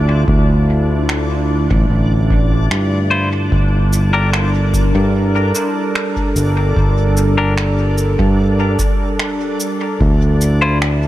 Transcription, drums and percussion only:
0.28 kick loud
1.09 finger snap medium
1.71 kick loud
2.31 kick loud
2.71 finger snap medium
3.52 kick loud
3.93 shaker soft
4.33 finger snap medium
4.74 kick loud
4.74 shaker soft
5.55 shaker soft
5.95 finger snap medium
6.17 kick medium
6.36 shaker soft
6.76 kick loud
7.17 shaker soft
7.58 finger snap medium
7.98 shaker soft
8.19 kick medium
8.79 kick medium
8.79 shaker soft
9.19 finger snap medium
9.60 shaker soft
10.01 kick loud
10.41 shaker soft
10.82 finger snap medium

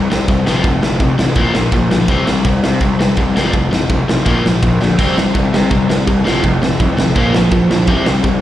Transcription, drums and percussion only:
0.12 snare loud
0.28 kick loud
0.28 crash medium
0.47 snare loud
0.64 kick loud
0.64 crash medium
0.83 snare loud
1.00 kick loud
1.00 crash medium
1.19 snare loud
1.35 kick loud
1.35 crash medium
1.55 snare loud
1.72 kick loud
1.72 crash medium
1.91 snare loud
2.08 kick loud
2.08 crash medium
2.27 snare loud
2.45 kick loud
2.45 crash medium
2.64 snare loud
2.81 kick loud
2.81 crash medium
3.01 snare loud
3.17 kick loud
3.17 crash medium
3.37 snare loud
3.53 kick loud
3.53 crash medium
3.73 snare loud
3.89 kick loud
3.89 crash medium
4.09 snare loud
4.26 kick loud
4.26 crash medium
4.46 snare loud
4.63 kick loud
4.63 crash medium
4.82 snare medium
4.99 kick loud
4.99 crash medium
5.18 snare loud
5.35 kick loud
5.35 crash medium
5.54 snare loud
5.71 kick loud
5.71 crash medium
5.90 snare loud
6.07 kick loud
6.07 crash medium
6.27 snare loud
6.44 kick loud
6.44 crash medium
6.63 snare loud
6.80 kick loud
6.80 crash medium
6.98 snare loud
7.15 kick loud
7.15 crash medium
7.34 snare loud
7.51 kick loud
7.51 crash medium
7.71 snare loud
7.87 kick loud
7.87 crash medium
8.06 snare loud
8.24 kick loud
8.24 crash medium

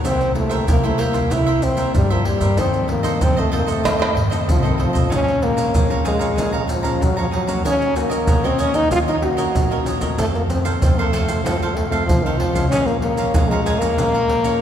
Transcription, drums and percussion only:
0.05 pandeiro medium
0.05 maracas medium
0.05 surdo medium
0.21 pandeiro soft
0.21 maracas soft
0.35 pandeiro medium
0.51 pandeiro medium
0.51 maracas medium
0.68 pandeiro medium
0.68 maracas medium
0.68 surdo loud
0.84 pandeiro soft
0.84 maracas soft
0.99 pandeiro medium
1.14 pandeiro medium
1.14 maracas medium
1.14 surdo soft
1.31 pandeiro medium
1.31 maracas medium
1.31 surdo medium
1.48 pandeiro soft
1.48 maracas soft
1.48 surdo soft
1.62 pandeiro medium
1.62 maracas medium
1.77 pandeiro medium
1.77 maracas medium
1.77 surdo soft
1.95 pandeiro medium
1.95 maracas medium
1.95 surdo loud
2.11 pandeiro soft
2.11 maracas soft
2.25 pandeiro medium
2.41 pandeiro medium
2.41 maracas medium
2.41 surdo soft
2.57 pandeiro medium
2.57 maracas medium
2.57 surdo medium
2.73 pandeiro soft
2.73 maracas soft
2.89 pandeiro medium
3.04 pandeiro medium
3.04 maracas medium
3.21 pandeiro medium
3.21 maracas medium
3.21 surdo loud
3.38 pandeiro soft
3.38 maracas soft
3.53 pandeiro medium
3.68 pandeiro medium
3.68 maracas medium
3.68 surdo soft
3.85 pandeiro medium
3.85 tamborim medium
3.85 maracas medium
3.85 surdo medium
4.02 pandeiro soft
4.02 tamborim medium
4.02 maracas soft
4.02 surdo soft
4.17 surdo medium
4.17 pandeiro medium
4.32 pandeiro medium
4.32 maracas medium
4.32 surdo soft
4.49 pandeiro medium
4.49 maracas medium
4.49 surdo loud
4.65 pandeiro soft
4.65 maracas soft
4.80 pandeiro medium
4.95 pandeiro medium
4.95 maracas medium
4.95 surdo loud
5.12 pandeiro medium
5.12 maracas medium
5.12 surdo medium
5.28 pandeiro soft
5.28 maracas soft
5.42 pandeiro medium
5.58 pandeiro medium
5.58 maracas medium
5.74 pandeiro medium
5.74 maracas medium
5.74 surdo loud
5.91 pandeiro soft
5.91 maracas soft
6.05 pandeiro medium
6.05 maracas medium
6.21 pandeiro medium
6.21 maracas medium
6.21 surdo soft
6.38 pandeiro medium
6.38 maracas medium
6.38 surdo medium
6.54 pandeiro soft
6.54 maracas soft
6.54 surdo soft
6.69 pandeiro medium
6.69 maracas medium
6.84 pandeiro medium
6.84 maracas medium
6.84 surdo soft
7.02 pandeiro medium
7.02 maracas medium
7.02 surdo medium
7.19 pandeiro soft
7.19 maracas soft
7.33 pandeiro medium
7.48 pandeiro medium
7.48 maracas medium
7.48 surdo soft
7.65 pandeiro medium
7.65 maracas medium
7.65 surdo medium
7.82 pandeiro soft
7.82 maracas soft
7.96 pandeiro medium
7.96 maracas medium
8.11 pandeiro medium
8.11 maracas medium
8.27 pandeiro medium
8.27 maracas medium
8.27 surdo loud
8.44 pandeiro soft
8.44 maracas soft
8.59 pandeiro medium
8.59 maracas medium
8.74 pandeiro medium
8.74 maracas medium
8.74 surdo soft
8.91 pandeiro medium
8.91 maracas medium
8.91 surdo medium
9.08 pandeiro soft
9.08 maracas soft
9.08 surdo soft
9.22 pandeiro medium
9.38 pandeiro medium
9.38 maracas medium
9.38 surdo soft
9.55 pandeiro medium
9.55 maracas medium
9.55 surdo medium
9.71 pandeiro soft
9.71 maracas soft
9.86 pandeiro medium
9.86 maracas medium
10.01 pandeiro medium
10.01 maracas medium
10.01 surdo soft
10.18 pandeiro medium
10.18 maracas medium
10.18 surdo medium
10.35 pandeiro soft
10.35 maracas soft
10.50 pandeiro medium
10.50 maracas medium
10.65 pandeiro medium
10.65 maracas medium
10.82 pandeiro medium
10.82 maracas medium
10.82 surdo loud
10.99 pandeiro soft
10.99 maracas soft
11.13 pandeiro medium
11.13 maracas medium
11.28 pandeiro medium
11.28 maracas medium
11.28 surdo soft
11.46 pandeiro medium
11.46 maracas medium
11.46 surdo medium
11.62 pandeiro soft
11.62 maracas soft
11.62 surdo soft
11.77 pandeiro medium
11.92 pandeiro medium
11.92 maracas medium
11.92 surdo soft
12.09 pandeiro medium
12.09 maracas medium
12.09 surdo loud
12.26 pandeiro soft
12.26 maracas soft
12.40 pandeiro medium
12.56 pandeiro medium
12.56 maracas medium
12.56 surdo soft
12.72 pandeiro medium
12.72 maracas medium
12.72 surdo medium
12.88 pandeiro soft
12.88 maracas soft
13.02 pandeiro medium
13.17 pandeiro medium
13.17 maracas medium
13.34 pandeiro medium
13.34 maracas medium
13.34 surdo loud
13.51 pandeiro soft
13.51 maracas soft
13.66 pandeiro medium
13.66 maracas medium
13.82 pandeiro medium
13.82 maracas medium
13.82 surdo soft
13.98 pandeiro medium
13.98 maracas medium
13.98 surdo medium
14.15 pandeiro soft
14.15 maracas soft
14.15 surdo soft
14.29 pandeiro medium
14.44 pandeiro medium
14.44 maracas medium
14.44 surdo soft

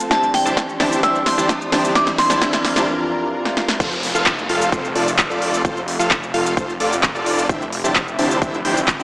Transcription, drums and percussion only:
0.00 shaker medium
0.11 kick loud
0.11 snare medium
0.11 shaker medium
0.23 shaker soft
0.34 snare medium
0.34 open hi-hat loud
0.46 shaker medium
0.57 kick loud
0.57 snare medium
0.57 shaker medium
0.69 shaker soft
0.80 snare medium
0.80 open hi-hat medium
0.92 shaker medium
1.03 kick loud
1.03 snare medium
1.03 shaker medium
1.15 shaker soft
1.26 snare medium
1.26 open hi-hat loud
1.39 shaker medium
1.49 kick loud
1.49 snare medium
1.49 shaker medium
1.62 shaker soft
1.72 snare medium
1.72 open hi-hat loud
1.85 shaker medium
1.95 kick loud
1.95 snare medium
1.95 shaker medium
2.07 snare medium
2.07 shaker soft
2.18 snare loud
2.18 open hi-hat loud
2.30 snare medium
2.30 shaker medium
2.42 kick loud
2.42 snare loud
2.42 shaker medium
2.53 snare medium
2.53 shaker soft
2.65 snare loud
2.65 open hi-hat loud
2.76 snare medium
2.76 shaker medium
3.45 snare soft
3.57 snare medium
3.69 snare medium
3.80 kick loud
3.80 crash loud
3.80 shaker medium
3.92 shaker soft
4.03 open hi-hat loud
4.16 shaker medium
4.26 kick loud
4.26 clap loud
4.26 shaker medium
4.39 shaker soft
4.49 open hi-hat loud
4.62 shaker medium
4.72 kick loud
4.72 shaker medium
4.85 shaker soft
4.96 open hi-hat loud
5.08 shaker medium
5.19 kick loud
5.19 clap loud
5.19 shaker medium
5.31 shaker soft
5.42 open hi-hat loud
5.54 shaker medium
5.65 kick loud
5.65 shaker medium
5.77 shaker soft
5.88 open hi-hat loud
6.00 shaker medium
6.11 kick loud
6.11 clap loud
6.11 shaker medium
6.23 shaker soft
6.34 open hi-hat loud
6.46 shaker medium
6.57 kick loud
6.57 shaker medium
6.70 shaker soft
6.80 open hi-hat loud
6.93 shaker medium
7.03 kick loud
7.03 clap loud
7.03 shaker medium
7.16 shaker soft
7.26 open hi-hat loud
7.39 shaker medium
7.49 kick loud
7.49 shaker medium
7.62 shaker soft
7.72 open hi-hat loud
7.85 shaker medium
7.96 kick loud
7.96 clap loud
7.96 shaker medium
8.08 shaker soft
8.19 open hi-hat loud
8.31 shaker medium
8.42 kick loud
8.42 shaker medium
8.54 shaker soft
8.65 open hi-hat loud
8.77 shaker medium
8.88 kick loud
8.88 clap loud
8.88 shaker medium

